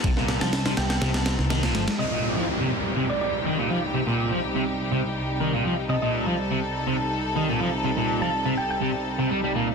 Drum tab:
RD |x-xxxxxxxxx-xxxx|----------------|----------------|----------------|
SD |-ooooooooooooooo|----------------|----------------|----------------|
BD |o---------------|----------------|----------------|----------------|

RD |----------------|
SD |----------------|
BD |----------------|